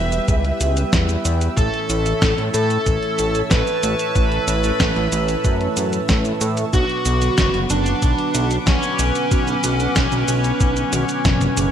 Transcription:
Already playing: E1 G3 B3 E4 G4 B4 E5 G5 E6
0.12 closed hi-hat, shaker
0.28 C#2, kick, closed hi-hat, shaker
0.45 closed hi-hat
0.60 C#2, closed hi-hat, shaker
0.77 closed hi-hat, shaker
0.93 E2, kick, snare, closed hi-hat, shaker
1.09 closed hi-hat, shaker
1.25 E2, closed hi-hat, shaker
1.41 closed hi-hat, shaker
1.57 A1 A2 E3 A3 C#4 E4 A4 C#5 A5 E6, kick, closed hi-hat, shaker
1.74 closed hi-hat
1.90 A1, closed hi-hat, shaker
2.06 A2 E3 A3 C#4 E4 A4, closed hi-hat, shaker
2.22 A2, kick, snare, closed hi-hat, shaker
2.38 A2, closed hi-hat
2.54 A2 A4, closed hi-hat, shaker
2.70 closed hi-hat, shaker
2.86 A1, kick, closed hi-hat, shaker
3.03 closed hi-hat
3.19 A1, closed hi-hat, shaker
3.35 closed hi-hat, shaker
3.51 A1 B4, kick, snare, closed hi-hat, shaker
3.67 closed hi-hat, shaker
3.83 A1, closed hi-hat, shaker
3.99 closed hi-hat, shaker
4.15 A1 A2 E3 A3 C#4 E4 A4, kick, closed hi-hat, shaker
4.32 closed hi-hat
4.48 A1, closed hi-hat, shaker
4.64 A2 E3 A3 C#4 E4 A4, closed hi-hat, shaker
4.80 A1, kick, snare, closed hi-hat, shaker
4.96 A1, closed hi-hat
5.12 A1, closed hi-hat, shaker
5.28 closed hi-hat, shaker
5.44 F#2, kick, closed hi-hat, shaker
5.61 closed hi-hat
5.77 F#2, closed hi-hat, shaker
5.93 closed hi-hat, shaker
6.09 A2, kick, snare, closed hi-hat, shaker
6.25 closed hi-hat, shaker
6.41 A2, closed hi-hat, shaker
6.57 closed hi-hat, shaker
6.73 B1 B2 F#3 B3 D4 F#4 B4 F#5, kick, closed hi-hat, shaker
6.89 closed hi-hat
7.05 B1, closed hi-hat, shaker
7.22 B2 D3 F#3 B3 F#4 B4, closed hi-hat, shaker
7.38 F#1, kick, snare, closed hi-hat, shaker
7.54 F#1, closed hi-hat
7.70 F#1 D4, closed hi-hat, shaker
7.86 closed hi-hat, shaker
8.02 B1, kick, closed hi-hat, shaker
8.18 closed hi-hat
8.35 B1, closed hi-hat, shaker
8.51 closed hi-hat, shaker
8.67 B1 C#4, kick, snare, closed hi-hat, shaker
8.83 closed hi-hat, shaker
8.99 B1, closed hi-hat, shaker
9.15 closed hi-hat, shaker
9.31 B1 B2 D3 F#3 B3 F#4 B4, kick, closed hi-hat, shaker
9.48 closed hi-hat, shaker
9.64 B1, closed hi-hat, shaker
9.80 B2 D3 F#3 B3 F#4 B4, closed hi-hat, shaker
9.96 B1, kick, snare, closed hi-hat, shaker
10.12 B1, closed hi-hat, shaker
10.28 B1, closed hi-hat, shaker
10.44 closed hi-hat, shaker
10.60 B1, kick, closed hi-hat, shaker
10.77 closed hi-hat, shaker
10.93 B1, closed hi-hat, high tom, shaker
11.09 closed hi-hat, shaker
11.25 F#1, kick, snare, closed hi-hat, mid tom, shaker
11.41 closed hi-hat, mid tom, shaker
11.57 F#1, closed hi-hat, shaker

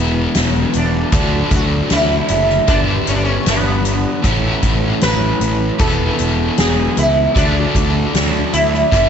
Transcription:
Already playing: E1 E3 G#3 B3 E4 B4 G#5
0.35 E1, snare, closed hi-hat
0.73 E1 D4, closed hi-hat
1.12 D2 D3 F#3 A3 D4 F#4 D5 A5, kick, closed hi-hat
1.51 D2 F#4, kick, closed hi-hat
1.90 D2 E4, snare, closed hi-hat
2.28 F#1, closed hi-hat
2.50 snare
2.67 G1 G2 D3 G3 B3 D4 G4 B5, kick, closed hi-hat
3.07 G1 C#4, closed hi-hat
3.15 D4
3.24 C#4
3.46 G1 B3, snare, closed hi-hat
3.85 closed hi-hat
4.23 A1 A2 E3 A3 C#4 E4 C#5 A5, kick, closed hi-hat
4.63 A1, kick, closed hi-hat
5.01 A1 B4, snare, closed hi-hat
5.41 A1, closed hi-hat
5.78 E1 E3 G#3 B3 E4 A4 B4 G#5, kick, closed hi-hat
6.19 E1, closed hi-hat
6.58 E1 G#4, snare, closed hi-hat
6.97 C#2 E4, closed hi-hat
7.35 D2 D3 F#3 A3 D4 F#4 D5 A5, kick, closed hi-hat
7.75 D2, kick, closed hi-hat
8.14 D2, snare, closed hi-hat
8.53 D2 E4, closed hi-hat
8.74 snare
8.91 G1 G2 D3 G3 B3 D4 B5, kick, closed hi-hat

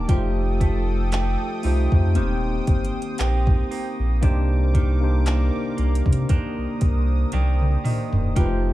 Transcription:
Already playing: A#3 D4 F5 G5 A5
0.08 F1 F3 G3 D#4 F4 G4 A4 C5 G5 D#6, kick, closed hi-hat
0.14 A3
0.61 A3, kick, closed hi-hat
1.12 A3 D#4 G4, clap, closed hi-hat
1.63 C2 A3 D#4 F4 G4 C5, open hi-hat
1.91 F2 A3 D#4 F4 G4 C5, kick
2.14 D#1 D#3 A#3 C4 D#4 G4 C5, closed hi-hat
2.67 G1, kick, closed hi-hat
2.85 closed hi-hat
3.02 closed hi-hat
3.18 A#1 A#3 C4 G4, clap, closed hi-hat
3.47 kick
3.71 A#3, open hi-hat
3.99 A#1
4.21 C2 C3 A#3 D4 D#4 G4 A#4 C5 D6, kick, closed hi-hat
4.74 D#3, kick, closed hi-hat
5.01 A#3 D4 D#4 G4 C5
5.26 D#3 A#3 D4, clap, closed hi-hat
5.77 C2 A#3, closed hi-hat
5.95 closed hi-hat
6.06 C3, kick
6.13 closed hi-hat
6.29 D#3 A#3 D4 D#6, kick, closed hi-hat
6.58 C2
6.81 C2, kick, closed hi-hat
7.32 C2 D#3 A#3 D4 G5, closed hi-hat, high tom
7.61 mid tom
7.84 D#3 D#5, mid tom, open hi-hat
8.13 D#1, floor tom
8.35 F1 F3 A3 D#4 F4 G4 B4 A5, kick, closed hi-hat
8.45 C5

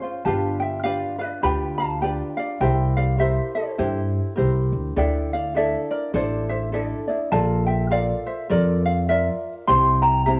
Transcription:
Already playing: C#5
0.02 C#4 F4 C5
0.25 G1 D4 F4 G4 B4 F5 A5
0.60 E5 G5
0.83 D4 F4 G4 B4 D5 F5
1.18 D4 F4 B4 D5
1.43 D2 D4 F4 G4 B4 G5 B5
1.78 F5 A5
2.01 D4 F4 G4 B4 D5 G5
2.37 D5 F5
2.60 C2 E4 G4 A#4 C5 E5 G5
2.97 D5 F5
3.18 E4 G4 A#4 C5 E5
3.55 A4 C5
3.78 G2 E4 G4 C5
4.36 C2 E4 G4 A#4 C5
4.72 D2
4.96 D2 D4 E4 A4 D5 E5 G5
5.33 D5 F5
5.55 D4 E4 A4 D5 E5
5.91 A#4 D5
6.14 A1 D4 E4 A4 C5 D5
6.49 C5 E5
6.72 D4 E4 A4 D5
7.08 D4 E4 D5
7.32 A#1 F4 A4 A#4 D5 F5 A5
7.67 E5 G5
7.91 F4 A4 A#4 D5 F5
8.26 C5 E5
8.50 F2 F4 A4 A#4 D5
8.86 D5 F5
9.09 F4 A#4 D5 E5
9.67 C2 C4 E4 G4 C5 G5 C6
10.02 G5 A#5
10.26 C4 E4 G4 C5 E5 A5

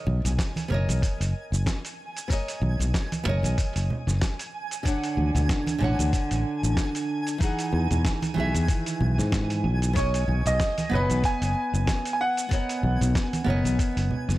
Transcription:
Already playing: A#4 C#5 D#5 G#5
0.07 B1, high conga
0.25 B1, open hi-hat, low conga, shaker
0.39 kick, snare, open hi-hat, shaker
0.56 open hi-hat, high conga, shaker
0.68 F#1 B3 A#4 C#5, low conga
0.74 D#5
0.88 B1, open hi-hat, high conga, shaker
1.02 kick, open hi-hat, shaker
1.20 F#1, open hi-hat, shaker
1.52 F#1, shaker
1.66 kick, snare, open hi-hat, shaker
1.85 open hi-hat, shaker
2.17 open hi-hat, shaker
2.28 B3 A#4 C#5, kick, open hi-hat, shaker
2.33 D#5
2.48 open hi-hat, shaker
2.62 B1, high conga
2.79 B1, open hi-hat, low conga, shaker
2.94 kick, snare, open hi-hat, shaker
3.12 open hi-hat, high conga, shaker
3.24 F#1 B3 A#4, low conga
3.28 C#5 D#5
3.43 B1, open hi-hat, high conga, shaker
3.58 kick, open hi-hat, shaker
3.76 F#1, open hi-hat, shaker
3.90 low conga
4.07 F#1, snare, shaker
4.21 kick, snare, open hi-hat, shaker
4.39 open hi-hat, shaker
4.71 open hi-hat, shaker
4.83 D3 D4 C#5, kick, open hi-hat, shaker
4.89 F#5
5.04 open hi-hat, shaker
5.17 D2, high conga
5.35 D2, open hi-hat, low conga, shaker
5.49 kick, snare, open hi-hat, shaker
5.67 open hi-hat, high conga, shaker
5.78 A1 D3 D4, low conga
5.82 C#5 F#5
5.99 D2, open hi-hat, high conga, shaker
6.13 kick, open hi-hat, shaker
6.31 A1, open hi-hat, shaker
6.63 A1, shaker
6.77 kick, snare, open hi-hat, shaker
6.95 open hi-hat, shaker
7.27 open hi-hat, shaker
7.38 E3 D#4 G#4, kick, open hi-hat, shaker
7.44 F#5
7.59 open hi-hat, shaker
7.72 E2, high conga
7.91 E2, open hi-hat, low conga, shaker
8.05 kick, snare, open hi-hat, shaker
8.22 open hi-hat, high conga, shaker
8.34 B1 D#3 E3 G#4, low conga
8.40 E5
8.54 E2, open hi-hat, high conga, shaker
8.68 kick, open hi-hat, shaker
8.86 open hi-hat, shaker
9.01 B1, low conga
9.18 G#2, snare, shaker
9.32 kick, snare, open hi-hat, shaker
9.50 open hi-hat, shaker
9.64 B1
9.82 open hi-hat, shaker
9.93 B3 A#4 C#5, kick, open hi-hat, shaker
9.97 C#5 D#5
10.14 open hi-hat, shaker
10.28 B1, high conga
10.46 B1 D#5, open hi-hat, low conga, shaker
10.60 kick, snare, open hi-hat, shaker
10.78 open hi-hat, high conga, shaker
10.89 F#1 B3 B4 C#5, low conga
10.95 D#5
11.10 B1, open hi-hat, high conga, shaker
11.24 G#5, kick, open hi-hat, shaker
11.41 F#1, open hi-hat, shaker
11.73 F#1, shaker
11.87 kick, snare, open hi-hat, shaker
12.05 open hi-hat, shaker
12.13 G#5
12.21 F#5
12.37 open hi-hat, shaker
12.49 B3 A#4 C#5, kick, open hi-hat, shaker
12.54 D#5
12.69 open hi-hat, shaker
12.83 B1, high conga
13.01 B1, open hi-hat, low conga, shaker
13.15 kick, snare, open hi-hat, shaker
13.33 open hi-hat, high conga, shaker
13.44 F#1 B3 A#4 C#5, low conga
13.50 D#5
13.65 B1, open hi-hat, high conga, shaker
13.79 kick, open hi-hat, shaker
13.97 F#1, open hi-hat, shaker
14.11 low conga
14.29 F#1, snare, shaker

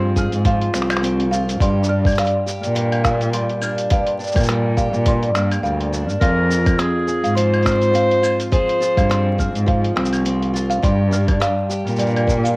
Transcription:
Already playing: G2 F3 C4 F4 G#4 C5
0.16 G#4 F6, kick, shaker
0.32 G#2, closed hi-hat, shaker
0.45 F3 F5, kick, closed hi-hat, shaker
0.62 closed hi-hat
0.74 C2 C4, finger snap, shaker
0.82 finger snap
0.90 finger snap, closed hi-hat, claves, shaker
0.92 claves
0.97 finger snap, claves
0.99 claves
1.01 C4, closed hi-hat, claves, shaker
1.20 closed hi-hat
1.31 F4 F5, shaker
1.49 closed hi-hat, shaker
1.60 G2 G4 C6, kick, closed hi-hat, shaker
1.84 shaker
1.89 D4 F6
2.05 kick, closed hi-hat, claves, shaker
2.10 closed hi-hat, shaker
2.15 G3, finger snap, closed hi-hat, shaker
2.19 F5, shaker
2.24 closed hi-hat, shaker
2.46 G4, shaker
2.63 A#2, closed hi-hat, shaker
2.75 G2, closed hi-hat, shaker
2.92 closed hi-hat, claves
3.04 A#3 F5, finger snap, kick, shaker
3.21 closed hi-hat, shaker
3.33 G3 C6, closed hi-hat, shaker
3.49 closed hi-hat
3.61 D4 F6, claves, shaker
3.78 closed hi-hat, shaker
3.90 G2 G4 F5, kick, closed hi-hat, shaker
4.07 closed hi-hat
4.19 D4, shaker
4.24 shaker
4.27 shaker
4.32 shaker
4.36 A#2, kick, closed hi-hat, claves, shaker
4.40 shaker
4.43 shaker
4.46 G3, finger snap, closed hi-hat, shaker
4.77 G4 F5, kick, shaker
4.93 A#2, shaker
5.06 G2 C6, kick, closed hi-hat, shaker
5.23 closed hi-hat
5.35 G2 A#3 F6, finger snap, shaker
5.52 closed hi-hat, claves, shaker
5.63 D2 G3 F5, shaker
5.81 closed hi-hat
5.93 D4, shaker
6.09 G2, shaker
6.21 F2 F3 G#4 A#4 F5, kick, closed hi-hat, shaker
6.50 F4, shaker
6.66 kick, closed hi-hat, claves, shaker
6.78 C4 G#4, finger snap, closed hi-hat, shaker
7.08 G#4, shaker
7.24 G#2 F5, closed hi-hat, shaker
7.35 F3 C5 C6, closed hi-hat, shaker
7.54 closed hi-hat, claves
7.63 C4 F6, finger snap, kick, closed hi-hat, shaker
7.71 closed hi-hat
7.82 closed hi-hat, shaker
7.94 C4 F5, closed hi-hat, shaker
8.11 closed hi-hat
8.22 F4, claves, shaker
8.40 closed hi-hat, shaker
8.52 F3 G#4 C5, kick, closed hi-hat, shaker
8.69 closed hi-hat
8.80 F4, shaker
8.97 G2 F5, kick, closed hi-hat, claves, shaker
9.09 C4 C6, finger snap, closed hi-hat, shaker
9.38 G#4 F6, kick, shaker
9.54 G#2, closed hi-hat, shaker
9.66 F3 F5, kick, closed hi-hat
9.84 closed hi-hat
9.96 C2 C4, finger snap
10.05 shaker
10.13 closed hi-hat, claves, shaker
10.25 C4, closed hi-hat, shaker
10.42 closed hi-hat
10.54 F4, shaker
10.70 F5, closed hi-hat, shaker
10.82 G2 G4 C6, kick, closed hi-hat, shaker
11.11 D4 F6, shaker
11.28 kick, closed hi-hat, claves
11.40 G3 F5, finger snap, closed hi-hat, shaker
11.69 G4, shaker
11.86 A#2, closed hi-hat, shaker
11.90 shaker
11.96 G2, closed hi-hat, shaker
12.00 shaker
12.06 shaker
12.10 shaker
12.16 closed hi-hat, claves
12.27 A#3, kick, shaker
12.44 F5, closed hi-hat, shaker

